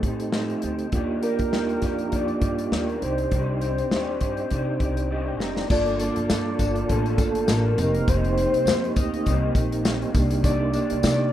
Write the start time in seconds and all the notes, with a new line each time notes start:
Already playing: A3 C4 D#4 G4
0.03 A2 D#4 A4, kick, closed hi-hat
0.07 C4
0.20 closed hi-hat
0.32 F3 C4 D#4 A4, snare
0.50 closed hi-hat
0.62 D2 C4 D#4 A4, closed hi-hat
0.79 closed hi-hat
0.90 D#2 D#3 A#3 D4 F4, kick, closed hi-hat
0.94 G3 A#3 D#4 G4 D5
1.23 A#3 D#4 G4 A#4 D5, closed hi-hat
1.39 kick, closed hi-hat
1.53 D#3 G3 A#3 D#4 G4 D5, snare
1.69 closed hi-hat
1.82 F2 D#4 G4 D5, kick, snare, closed hi-hat
1.87 A#3
1.99 closed hi-hat
2.12 A#3 D#4 G4 D5, kick, closed hi-hat
2.28 closed hi-hat
2.41 G2 A#3 D#4 G4 D5, kick, closed hi-hat
2.58 closed hi-hat
2.71 D#2 D#3 G3 A#3 D#4 G4 D5, snare
2.76 A#4
2.89 closed hi-hat
2.99 C2 C4 D4 D#4 C5 D5, closed hi-hat
3.04 C4 D#4 G4
3.18 closed hi-hat
3.31 C2 C3 G3 C4 D#4 G4, kick, closed hi-hat
3.36 D5
3.61 G4 D5, closed hi-hat
3.66 C4 D#4
3.78 closed hi-hat
3.91 D#2 C3 G3 C4 D#4 G4 D5, snare
4.21 G2 C4 D#4 G4 D5, kick, closed hi-hat
4.37 closed hi-hat
4.50 C3 C4 D#4 G4 D5, kick, closed hi-hat
4.79 C2 C4 D#4 G4 D5, kick, closed hi-hat
4.97 closed hi-hat
5.10 C3 G3 C4 D#4 G4 D5 D#5
5.28 G5
5.39 F1 C4 D#4 G4 D5 A#5, snare
5.57 snare
5.68 G1 G2 D3 F3 A#3 D4 F4 A4 D5, kick, crash, tambourine
5.73 A4
5.86 closed hi-hat
5.99 F3 A#3 D4 A4 D5, closed hi-hat, tambourine
6.16 G1, closed hi-hat
6.29 G2 F3 A#3 D4 A4, snare, tambourine
6.59 G1 F3 A#3 D4 A4, kick, closed hi-hat, tambourine
6.76 closed hi-hat
6.88 A1 G2 D3 F3 A#3 D4 A4, kick, closed hi-hat
7.06 closed hi-hat
7.18 G1 A#3 D4 A4, kick, closed hi-hat, tambourine
7.22 F3
7.35 closed hi-hat
7.48 A1 F3 A#3 D4 A4 A#4, snare, tambourine
7.76 F1 A#3 C4 D#4, closed hi-hat, tambourine
7.81 D#3 A#3 G4 A#4
7.95 closed hi-hat
8.08 F1 F2 C3 D#3 A#3 D#4 C5, kick, closed hi-hat, tambourine
8.25 closed hi-hat
8.38 D#3 A#3 D#4, closed hi-hat
8.53 C2, closed hi-hat
8.65 F2 C3 D#3 A#3, snare, tambourine
8.70 D#4
8.85 closed hi-hat
8.96 D2 D#3 A#3 D#4 D#5, kick, closed hi-hat, tambourine
9.14 closed hi-hat
9.25 C2 F2 C3 D#3 A#3 D#4, kick, closed hi-hat, tambourine
9.55 A#1 D#3 A#3 D#4, kick, closed hi-hat, tambourine
9.72 closed hi-hat
9.83 C3 D#3 A#3 D#4, snare, tambourine
10.02 closed hi-hat
10.12 C2 A#3 D4 D#4, kick, closed hi-hat, tambourine
10.16 D#3 G4
10.31 closed hi-hat
10.43 C3 D#3 A#3 D4 D5, kick, closed hi-hat, tambourine
10.73 D#3 A#3 D4 D5, closed hi-hat, tambourine
10.90 C2, closed hi-hat
11.02 C3 D#3 A#3 D4, snare, tambourine